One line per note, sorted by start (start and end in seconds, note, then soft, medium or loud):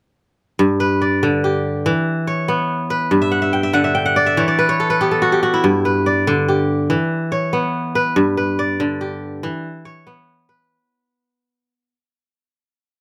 0.59 1.90 G2 medium
0.80 2.03 B4 medium
1.01 2.12 D5 medium
1.23 1.90 D3 medium
1.44 2.85 G4 medium
1.86 3.16 E3 medium
2.27 3.42 C#5 medium
2.48 4.35 B3 medium
2.90 4.13 B4 medium
3.11 4.43 G2 medium
3.22 3.41 E5 medium
3.32 3.59 F#5 medium
3.42 3.63 E5 medium
3.53 3.80 G5 medium
3.63 3.84 E5 medium
3.73 4.43 D3 medium
3.73 4.01 F#5 medium
3.84 4.26 E5 medium
3.95 4.88 G5 medium
4.06 5.07 F#5 medium
4.16 4.43 D5 medium
4.26 5.30 E5 medium
4.37 5.69 E3 medium
4.37 4.68 C#5 medium
4.48 4.75 D5 medium
4.59 4.90 B4 medium
4.69 5.84 C#5 medium
4.80 5.11 A4 medium
4.90 5.85 B4 medium
5.01 6.87 B3 medium
5.01 5.28 G4 medium
5.11 6.43 A4 medium
5.22 5.42 F#4 medium
5.32 6.48 G4 medium
5.43 5.70 F#4 medium
5.54 7.10 E4 medium
5.64 6.95 G2 medium
5.85 7.08 B4 medium
6.06 7.17 D5 medium
6.27 6.95 D3 medium
6.48 7.90 G4 medium
6.90 8.21 E3 medium
7.32 8.46 C#5 medium
7.53 9.39 B3 medium
7.95 8.37 B4 medium
8.16 9.48 G2 medium
8.37 9.60 B4 medium
8.59 9.70 D5 medium
8.80 9.48 D3 medium
9.01 10.42 G4 medium
9.43 10.75 E3 medium
9.85 11.00 C#5 medium
10.07 11.93 B3 medium
10.49 11.72 B4 medium